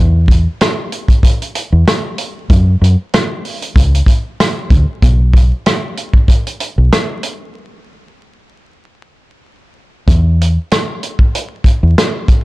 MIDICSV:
0, 0, Header, 1, 3, 480
1, 0, Start_track
1, 0, Tempo, 631579
1, 1898, Time_signature, 4, 2, 24, 8
1, 9455, End_track
2, 0, Start_track
2, 0, Title_t, "Fingered electric bass"
2, 0, Program_c, 0, 33
2, 0, Note_on_c, 0, 40, 112
2, 352, Note_off_c, 0, 40, 0
2, 1311, Note_on_c, 0, 40, 91
2, 1394, Note_off_c, 0, 40, 0
2, 1900, Note_on_c, 0, 42, 110
2, 2086, Note_off_c, 0, 42, 0
2, 2139, Note_on_c, 0, 42, 99
2, 2241, Note_off_c, 0, 42, 0
2, 2856, Note_on_c, 0, 37, 104
2, 3043, Note_off_c, 0, 37, 0
2, 3576, Note_on_c, 0, 38, 92
2, 3680, Note_off_c, 0, 38, 0
2, 3819, Note_on_c, 0, 35, 105
2, 4193, Note_off_c, 0, 35, 0
2, 5152, Note_on_c, 0, 35, 84
2, 5235, Note_off_c, 0, 35, 0
2, 7659, Note_on_c, 0, 40, 105
2, 8033, Note_off_c, 0, 40, 0
2, 8990, Note_on_c, 0, 40, 88
2, 9074, Note_off_c, 0, 40, 0
2, 9455, End_track
3, 0, Start_track
3, 0, Title_t, "Drums"
3, 214, Note_on_c, 9, 36, 97
3, 235, Note_on_c, 9, 42, 77
3, 290, Note_off_c, 9, 36, 0
3, 311, Note_off_c, 9, 42, 0
3, 462, Note_on_c, 9, 42, 104
3, 467, Note_on_c, 9, 38, 124
3, 469, Note_on_c, 9, 37, 99
3, 538, Note_off_c, 9, 42, 0
3, 543, Note_off_c, 9, 38, 0
3, 545, Note_off_c, 9, 37, 0
3, 700, Note_on_c, 9, 42, 62
3, 776, Note_off_c, 9, 42, 0
3, 824, Note_on_c, 9, 36, 78
3, 832, Note_on_c, 9, 42, 52
3, 900, Note_off_c, 9, 36, 0
3, 908, Note_off_c, 9, 42, 0
3, 935, Note_on_c, 9, 36, 104
3, 944, Note_on_c, 9, 42, 94
3, 1011, Note_off_c, 9, 36, 0
3, 1020, Note_off_c, 9, 42, 0
3, 1078, Note_on_c, 9, 42, 54
3, 1154, Note_off_c, 9, 42, 0
3, 1179, Note_on_c, 9, 42, 89
3, 1255, Note_off_c, 9, 42, 0
3, 1426, Note_on_c, 9, 38, 118
3, 1427, Note_on_c, 9, 37, 93
3, 1427, Note_on_c, 9, 42, 110
3, 1502, Note_off_c, 9, 38, 0
3, 1503, Note_off_c, 9, 37, 0
3, 1503, Note_off_c, 9, 42, 0
3, 1657, Note_on_c, 9, 42, 77
3, 1733, Note_off_c, 9, 42, 0
3, 1899, Note_on_c, 9, 36, 125
3, 1901, Note_on_c, 9, 42, 81
3, 1975, Note_off_c, 9, 36, 0
3, 1977, Note_off_c, 9, 42, 0
3, 2156, Note_on_c, 9, 42, 75
3, 2232, Note_off_c, 9, 42, 0
3, 2383, Note_on_c, 9, 42, 99
3, 2388, Note_on_c, 9, 38, 127
3, 2389, Note_on_c, 9, 37, 100
3, 2459, Note_off_c, 9, 42, 0
3, 2464, Note_off_c, 9, 38, 0
3, 2465, Note_off_c, 9, 37, 0
3, 2620, Note_on_c, 9, 46, 44
3, 2696, Note_off_c, 9, 46, 0
3, 2753, Note_on_c, 9, 42, 52
3, 2829, Note_off_c, 9, 42, 0
3, 2855, Note_on_c, 9, 36, 102
3, 2864, Note_on_c, 9, 42, 91
3, 2931, Note_off_c, 9, 36, 0
3, 2940, Note_off_c, 9, 42, 0
3, 2999, Note_on_c, 9, 42, 58
3, 3075, Note_off_c, 9, 42, 0
3, 3089, Note_on_c, 9, 36, 89
3, 3100, Note_on_c, 9, 42, 85
3, 3165, Note_off_c, 9, 36, 0
3, 3176, Note_off_c, 9, 42, 0
3, 3346, Note_on_c, 9, 38, 122
3, 3347, Note_on_c, 9, 37, 92
3, 3347, Note_on_c, 9, 42, 112
3, 3422, Note_off_c, 9, 38, 0
3, 3423, Note_off_c, 9, 37, 0
3, 3423, Note_off_c, 9, 42, 0
3, 3575, Note_on_c, 9, 36, 104
3, 3577, Note_on_c, 9, 42, 74
3, 3651, Note_off_c, 9, 36, 0
3, 3653, Note_off_c, 9, 42, 0
3, 3818, Note_on_c, 9, 36, 120
3, 3821, Note_on_c, 9, 42, 84
3, 3894, Note_off_c, 9, 36, 0
3, 3897, Note_off_c, 9, 42, 0
3, 4054, Note_on_c, 9, 36, 95
3, 4075, Note_on_c, 9, 42, 75
3, 4130, Note_off_c, 9, 36, 0
3, 4151, Note_off_c, 9, 42, 0
3, 4301, Note_on_c, 9, 42, 99
3, 4307, Note_on_c, 9, 38, 124
3, 4308, Note_on_c, 9, 37, 98
3, 4377, Note_off_c, 9, 42, 0
3, 4383, Note_off_c, 9, 38, 0
3, 4384, Note_off_c, 9, 37, 0
3, 4540, Note_on_c, 9, 42, 63
3, 4616, Note_off_c, 9, 42, 0
3, 4663, Note_on_c, 9, 36, 81
3, 4739, Note_off_c, 9, 36, 0
3, 4774, Note_on_c, 9, 36, 99
3, 4782, Note_on_c, 9, 42, 92
3, 4850, Note_off_c, 9, 36, 0
3, 4858, Note_off_c, 9, 42, 0
3, 4915, Note_on_c, 9, 42, 55
3, 4991, Note_off_c, 9, 42, 0
3, 5017, Note_on_c, 9, 42, 87
3, 5093, Note_off_c, 9, 42, 0
3, 5264, Note_on_c, 9, 38, 119
3, 5265, Note_on_c, 9, 37, 95
3, 5265, Note_on_c, 9, 42, 108
3, 5340, Note_off_c, 9, 38, 0
3, 5341, Note_off_c, 9, 37, 0
3, 5341, Note_off_c, 9, 42, 0
3, 5495, Note_on_c, 9, 42, 76
3, 5571, Note_off_c, 9, 42, 0
3, 7658, Note_on_c, 9, 36, 118
3, 7660, Note_on_c, 9, 42, 80
3, 7734, Note_off_c, 9, 36, 0
3, 7736, Note_off_c, 9, 42, 0
3, 7915, Note_on_c, 9, 42, 73
3, 7991, Note_off_c, 9, 42, 0
3, 8143, Note_on_c, 9, 42, 95
3, 8148, Note_on_c, 9, 38, 120
3, 8149, Note_on_c, 9, 37, 94
3, 8219, Note_off_c, 9, 42, 0
3, 8224, Note_off_c, 9, 38, 0
3, 8225, Note_off_c, 9, 37, 0
3, 8382, Note_on_c, 9, 42, 62
3, 8458, Note_off_c, 9, 42, 0
3, 8504, Note_on_c, 9, 36, 80
3, 8580, Note_off_c, 9, 36, 0
3, 8625, Note_on_c, 9, 42, 89
3, 8701, Note_off_c, 9, 42, 0
3, 8849, Note_on_c, 9, 36, 86
3, 8861, Note_on_c, 9, 42, 85
3, 8925, Note_off_c, 9, 36, 0
3, 8937, Note_off_c, 9, 42, 0
3, 9105, Note_on_c, 9, 38, 115
3, 9106, Note_on_c, 9, 42, 108
3, 9107, Note_on_c, 9, 37, 93
3, 9181, Note_off_c, 9, 38, 0
3, 9182, Note_off_c, 9, 42, 0
3, 9183, Note_off_c, 9, 37, 0
3, 9335, Note_on_c, 9, 36, 99
3, 9337, Note_on_c, 9, 42, 72
3, 9411, Note_off_c, 9, 36, 0
3, 9413, Note_off_c, 9, 42, 0
3, 9455, End_track
0, 0, End_of_file